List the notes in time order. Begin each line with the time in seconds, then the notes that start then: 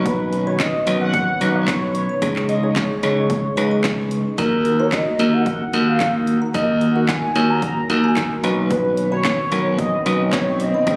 Already playing: B1 D#3 B3 C#4 D#4 F#4 B4 C#5
0.06 B4 C#6, kick, closed hi-hat
0.20 B4
0.33 C#4, closed hi-hat
0.47 D#4 F#4 B4 C#5 C#6
0.60 B4 D#5, kick, snare, clap, closed hi-hat
0.74 C#4
0.86 B1 D#4 F#4 B4 C#5 C#6, closed hi-hat
1.01 B4 F#5
1.14 C#4, kick, closed hi-hat
1.40 B1 D#4 F#4 B4 C#5, closed hi-hat
1.55 C#5
1.68 C#6, kick, snare, clap, closed hi-hat
1.82 B4
1.95 C#4 C#5, closed hi-hat
2.09 C#6
2.22 C#2 C#3 G#3 C#4 D#4 G#4 C#5, kick, closed hi-hat
2.36 clap
2.49 D#5, closed hi-hat
2.63 C#4 D#4 G#4 C#5
2.76 C#5, kick, snare, clap, closed hi-hat
3.03 C#2 C#4 D#4 G#4 C#5, closed hi-hat
3.17 C#4
3.30 C#6, kick, closed hi-hat
3.44 G#4
3.57 C#2 C#4 D#4 G#4 B4, closed hi-hat
3.71 C#6
3.84 kick, snare, clap, closed hi-hat
3.98 C#4
4.11 C#6, closed hi-hat
4.38 D#2 D#3 A#3 D#4 F#4 A#4 A#5, kick, closed hi-hat
4.52 F#4
4.65 A#3, closed hi-hat
4.79 A#3 D#4 F#4 A#4 C#5 A#5
4.92 F#4 D#5, kick, snare, clap, closed hi-hat
5.07 A#3
5.19 D#2 A#3 D#4 F#4 A#4 A#5, closed hi-hat
5.33 F#4 F#5
5.46 A#3, kick, closed hi-hat
5.73 D#2 A#3 D#4 F#4 A#4, closed hi-hat
5.87 F5
6.00 A#5, kick, snare, clap, closed hi-hat
6.15 F#4
6.27 A#3, closed hi-hat
6.42 A#5
6.54 D#2 A#3 D#4 F#4 A#4 D#5, kick, closed hi-hat
6.81 closed hi-hat
6.95 A#3 D#4 F#4 A#4 F#5
7.08 G#5, kick, snare, clap, closed hi-hat
7.35 D#2 A#3 D#4 F#4 C#5, closed hi-hat
7.49 A#3 A#5
7.62 A#5, kick, closed hi-hat
7.77 F#4
7.89 D#2 A#3 D#4 F#4 A#4, closed hi-hat
8.04 G#5 A#5
8.17 kick, snare, clap, closed hi-hat
8.31 A#3
8.43 B1 D#3 B3 C#4 D#4 F#4 B4 B5, closed hi-hat
8.71 B4 B5, kick, closed hi-hat, swell
8.85 D#4
8.97 B3, closed hi-hat
9.12 C#4 D#4 F#4 B4 C#5 B5
9.25 D#4, kick, snare, clap, closed hi-hat
9.39 B3
9.52 B1 C#4 D#4 F#4 A#4 B5, closed hi-hat
9.66 D#4
9.79 B3 D#5, kick, closed hi-hat
10.06 B1 C#4 D#4 F#4 B4 D#5, closed hi-hat
10.33 C#5 B5, kick, snare, clap, closed hi-hat
10.47 D#4
10.60 B3 D#5, closed hi-hat
10.74 B5
10.87 C#2 C#3 C#4 D#4 G#4 C#5, kick, closed hi-hat